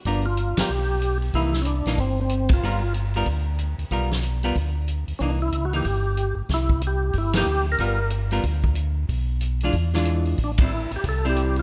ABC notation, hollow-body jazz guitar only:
X:1
M:4/4
L:1/8
Q:"Swing" 1/4=186
K:Gmix
V:1 name="Hollow-body jazz guitar"
[G,B,F^A] z2 [G,B,FA] z4 | [E,_B,^D] z2 [E,B,D] z4 | [G,B,F^A] z2 [G,B,FA] z4 | [G,B,F^A] z2 [G,B,FA] z4 |
[E,_B,^D] z2 [E,B,D] z4 | z4 z [E,_B,^D] z2 | [G,B,F^A] z2 [G,B,FA] z4 | z3 [E,_A,DF] z [E,^G,DF]3 |
z [G,CE] z3 [G,CE]3 |]